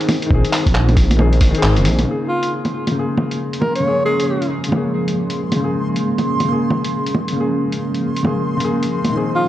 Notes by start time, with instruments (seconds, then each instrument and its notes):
Already playing: felt piano D#3 C4 G#4, ambient pad C4 D#4 G#4
0.01 closed hi-hat
0.09 open hi-hat, low bongo
0.22 felt piano D#3, closed hi-hat
0.30 detuned saw bass A#1, felt piano C4, kick
0.34 felt piano G#4
0.45 closed hi-hat
0.53 clap, open hi-hat
0.66 detuned saw bass A#1, kick, closed hi-hat
0.75 clap
0.89 closed hi-hat, low bongo
0.97 kick, open hi-hat
1.11 closed hi-hat, low bongo
1.16 felt piano D#3 C4 G#4, low bongo
1.33 closed hi-hat
1.41 kick, open hi-hat
1.50 felt piano D#3 C4
1.55 felt piano G#4, closed hi-hat
1.63 detuned saw bass G#1, clap
1.76 detuned saw bass F1, closed hi-hat
1.85 detuned saw bass A#1, open hi-hat
1.99 closed hi-hat, low bongo
2.03 felt piano C#3 A#3, ambient pad F3, synth texture C6
2.07 ambient pad G#3 A#3 C#4 G#4, felt piano G#4
2.28 alto saxophone F4
2.43 closed hi-hat
2.65 closed hi-hat, low bongo
2.87 closed hi-hat, low bongo
2.91 felt piano C#3 A#3
2.99 felt piano G#4
3.17 low bongo
3.31 closed hi-hat
3.53 closed hi-hat
3.61 alto saxophone A#4, low bongo
3.75 alto saxophone C#5, closed hi-hat
3.80 felt piano C#3
3.84 felt piano A#3 G#4
4.05 alto saxophone G#4
4.20 closed hi-hat
4.42 closed hi-hat
4.64 closed hi-hat
4.68 felt piano C#3
4.72 felt piano A#3 G#4, low bongo
5.08 closed hi-hat
5.30 closed hi-hat
5.52 closed hi-hat, low bongo
5.56 felt piano C#3 A#3
5.64 felt piano G#4
5.96 closed hi-hat
6.18 closed hi-hat, low bongo
6.40 closed hi-hat, low bongo
6.44 felt piano C#3
6.48 felt piano A#3 G#4
6.70 low bongo
6.85 closed hi-hat
7.06 closed hi-hat
7.15 low bongo
7.28 closed hi-hat
7.32 felt piano C#3 A#3
7.40 felt piano G#4
7.72 closed hi-hat
7.95 closed hi-hat
8.17 closed hi-hat
8.23 felt piano C#3 A#3 G#4, low bongo
8.57 felt piano C#3 A#3, closed hi-hat
8.64 felt piano G#4
8.83 closed hi-hat
9.05 closed hi-hat, low bongo
9.09 felt piano A#2 D#3, ambient pad A#2 C4 D#4
9.15 felt piano C4 G#4
9.35 alto saxophone F4